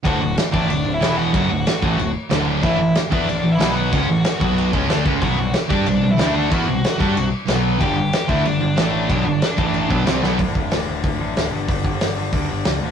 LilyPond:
<<
  \new Staff \with { instrumentName = "Lead electric guitar" } { \time 4/4 \key d \major \tempo 4 = 186 <fis' fis''>4 r8 <d' d''>8 <d' d''>8. <e' e''>8. <fis' fis''>8~ | <fis' fis''>2~ <fis' fis''>8 r4. | <e' e''>4 r8 <d' d''>8 <d' d''>8. <e' e''>8. <fis' fis''>8~ | <fis' fis''>2~ <fis' fis''>8 r4. |
<fis' fis''>4 r8 <d' d''>8 <d' d''>8. <e' e''>8. <fis' fis''>8~ | <fis' fis''>2~ <fis' fis''>8 r4. | <g' g''>4. <e' e''>8 <d' d''>2~ | <d' d''>2. r4 |
r1 | r1 | }
  \new Staff \with { instrumentName = "Distorted electric guitar" } { \clef bass \time 4/4 \key d \major <d, a, d>8 <d, a,>8 r8 <a, e a>8 <d, a,>8 <d, a,>8 <e, b, e>4 | <fis, cis fis>8 <d, a,>8 r8 <a, e a>8 <d, a,>8 r8 <d, a, d>4 | <a, e a>8 <a, e>8 r8 <e b e'>8 <a, e>8 <a, e>8 <b, fis b>4 | <cis gis cis'>8 <a, e>8 r8 <b, fis b>4 <cis gis cis'>8 <d a d'>8 <cis gis cis'>8 |
<b, fis b>8 <c g>8 r8 <g d' g'>8 <c g>8 <c g>8 <d a d'>4 | <e b e'>8 <c g>8 r8 <g d' g'>8 <c g>8 r8 <b, fis b>4 | <g, d g>8 <g, d>8 r8 <d a d'>8 <g, d>8 <g, d>8 <a, e a>4 | <b, fis b>8 <g, d>8 r8 <a, e a>4 <b, fis b>8 <c g c'>8 <b, fis b>8 |
r1 | r1 | }
  \new Staff \with { instrumentName = "Distorted electric guitar" } { \clef bass \time 4/4 \key d \major <d, a, d>8 <d, a,>8 r8 <a, e a>8 <d, a,>8 <d, a,>8 <e, b, e>4 | <fis, cis fis>8 <d, a,>8 r8 <a, e a>8 <d, a,>8 r8 <d, a, d>4 | <a, e a>8 <a, e>8 r8 <e b e'>8 <a, e>8 <a, e>8 <b, fis b>4 | <cis gis cis'>8 <a, e>8 r8 <b, fis b>4 <cis gis cis'>8 <d a d'>8 <cis gis cis'>8 |
<b, fis b>8 <c g>8 r8 <g d' g'>8 <c g>8 <c g>8 <d a d'>4 | <e b e'>8 <c g>8 r8 <g d' g'>8 <c g>8 r8 <b, fis b>4 | <g, d g>8 <g, d>8 r8 <d a d'>8 <g, d>8 <g, d>8 <a, e a>4 | <b, fis b>8 <g, d>8 r8 <a, e a>4 <b, fis b>8 <c g c'>8 <b, fis b>8 |
r1 | r1 | }
  \new Staff \with { instrumentName = "Distorted electric guitar" } { \clef bass \time 4/4 \key d \major <d, a, d>8 <d, a,>8 r8 <a, e a>8 <d, a,>8 <d, a,>8 <e, b, e>4 | <fis, cis fis>8 <d, a,>8 r8 <a, e a>8 <d, a,>8 r8 <d, a, d>4 | <a, e a>8 <a, e>8 r8 <e b e'>8 <a, e>8 <a, e>8 <b, fis b>4 | <cis gis cis'>8 <a, e>8 r8 <b, fis b>4 <cis gis cis'>8 <d a d'>8 <cis gis cis'>8 |
<b, fis b>8 <c g>8 r8 <g d' g'>8 <c g>8 <c g>8 <d a d'>4 | <e b e'>8 <c g>8 r8 <g d' g'>8 <c g>8 r8 <b, fis b>4 | <g, d g>8 <g, d>8 r8 <d a d'>8 <g, d>8 <g, d>8 <a, e a>4 | <b, fis b>8 <g, d>8 r8 <a, e a>4 <b, fis b>8 <c g c'>8 <b, fis b>8 |
<d, a, d>8 <d, a, d>8 <d, a, d>8 <d, a, d>8 <d, a, d>8 <d, a, d>8 <d, a, d>8 <g, d g>8 | <g, d g>8 <g, d g>8 <g, d g>8 <g, d g>8 <g, d g>8 <g, d g>8 <g, d g>8 <d, a, d>8 | }
  \new Staff \with { instrumentName = "Picked electric bass" } { \clef bass \time 4/4 \key d \major d,,8 d,,8 r8 a,,8 d,,8 d,,8 e,,4 | fis,,8 d,,8 r8 a,,8 d,,8 r8 d,,4 | a,,8 a,,8 r8 e,8 a,,8 a,,8 b,,4 | cis,8 a,,8 r8 b,,4 cis,8 d,8 cis,8 |
b,,8 b,,8 r8 g,8 b,,8 b,,8 d,4 | e,8 b,,8 r8 g,8 b,,8 r8 b,,4 | g,,8 g,,8 r8 d,8 g,,8 g,,8 a,,4 | b,,8 g,,8 r8 a,,4 b,,8 c,8 b,,8 |
d,,8 d,,8 d,,8 d,,8 d,,8 a,,8 d,,8 g,,8 | g,,8 g,,8 g,,4 d,8 g,,8 cis,8 d,,8 | }
  \new DrumStaff \with { instrumentName = "Drums" } \drummode { \time 4/4 <cymc bd>4 <cymc sn>8 bd8 cymc4 <cymc sn>4 | <cymc bd>4 <cymc sn>8 bd8 cymc4 <cymc sn>4 | <cymc bd>4 <cymc sn>8 bd8 cymc4 <cymc sn>4 | <cymc bd>4 <cymc sn>8 bd8 cymc8 bd8 <cymc sn>8 bd8 |
<cymc bd>4 <cymc sn>8 bd8 cymc4 <cymc sn>4 | <cymc bd>4 <cymc sn>8 bd8 cymc4 <cymc sn>4 | <cymc bd>4 <cymc sn>8 bd8 cymc4 <cymc sn>4 | <cymc bd>4 <cymc sn>8 bd8 cymc8 bd8 <cymc sn>8 sn8 |
<hho bd>8 bd8 <hho sn>4 <hho bd>4 <hho sn>4 | <hho bd>8 bd8 <hho sn>4 <hho bd>4 <hho sn>4 | }
>>